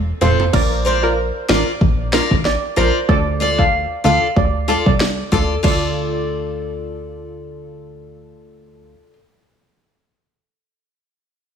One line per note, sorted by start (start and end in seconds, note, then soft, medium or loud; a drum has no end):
0.00 0.13 E1 medium
0.21 0.47 F1 medium
0.21 0.43 C4 medium
0.21 0.39 C4 medium
0.21 0.39 F4 medium
0.21 0.44 F4 medium
0.21 0.39 A4 medium
0.21 0.44 A4 medium
0.21 0.36 C5 medium
0.21 mid tom medium
0.21 low bongo medium
0.39 floor tom medium
0.39 high bongo medium
0.53 1.31 A#1 loud
0.53 0.99 D4 medium
0.53 0.99 F4 medium
0.53 0.99 A#4 loud
0.53 0.68 D5 loud
0.53 kick loud
0.53 crash medium
0.85 1.07 F4 medium
0.85 1.07 A#4 medium
0.85 1.00 C5 medium
0.85 1.08 D5 medium
1.03 1.17 D4 medium
1.03 1.17 F4 medium
1.03 1.17 A#4 medium
1.03 1.30 A#4 medium
1.49 1.64 A1 medium
1.49 1.67 D4 medium
1.49 1.71 F4 medium
1.49 1.67 F4 medium
1.49 1.67 A#4 medium
1.49 1.71 A#4 medium
1.49 1.76 D5 medium
1.49 1.72 D5 medium
1.49 snare loud
1.81 2.21 A#1 medium
1.81 kick medium
2.12 2.30 D4 medium
2.12 2.34 F4 medium
2.12 2.31 F4 medium
2.12 2.31 A#4 medium
2.12 2.35 A#4 medium
2.12 2.35 D5 medium
2.12 snare loud
2.31 2.57 A1 medium
2.31 kick medium
2.45 2.60 D5 medium
2.45 snare medium
2.76 2.91 A#1 medium
2.76 2.94 D4 medium
2.76 2.98 F4 medium
2.76 2.94 F4 medium
2.76 2.95 A#4 medium
2.76 2.99 A#4 medium
2.76 2.92 C5 medium
2.76 2.99 D5 medium
3.09 3.87 D2 loud
3.09 3.54 D4 medium
3.09 3.54 F4 medium
3.09 3.54 A4 loud
3.09 3.23 D5 loud
3.09 kick loud
3.40 3.62 F4 medium
3.40 3.63 A4 medium
3.40 3.56 D5 medium
3.40 3.63 D5 medium
3.58 3.72 D4 medium
3.58 3.72 F4 medium
3.58 3.73 A4 medium
3.58 3.85 F5 medium
3.58 kick medium
4.04 4.19 D2 medium
4.04 4.22 D4 medium
4.04 4.26 F4 medium
4.04 4.22 F4 medium
4.04 4.22 A4 medium
4.04 4.26 A4 medium
4.04 4.27 D5 medium
4.04 4.31 F5 medium
4.36 4.77 D2 medium
4.36 4.51 D5 medium
4.36 kick medium
4.68 4.86 D4 medium
4.68 4.90 F4 medium
4.68 4.86 F4 medium
4.68 4.86 A4 medium
4.68 4.90 A4 medium
4.68 4.91 D5 medium
4.86 5.23 C2 medium
4.86 4.98 D5 medium
4.86 kick medium
5.00 snare loud
5.32 5.58 D2 medium
5.32 5.50 D4 medium
5.32 5.54 F4 medium
5.32 5.50 F4 medium
5.32 5.50 A4 medium
5.32 5.54 A4 medium
5.32 5.55 D5 loud
5.32 kick medium
5.63 8.95 D2 loud
5.63 9.07 D4 medium
5.63 9.13 F4 medium
5.63 9.08 F4 medium
5.63 9.08 A4 loud
5.63 9.16 A4 medium
5.63 7.52 D5 medium
5.63 kick loud
5.63 crash medium
5.68 9.18 D5 medium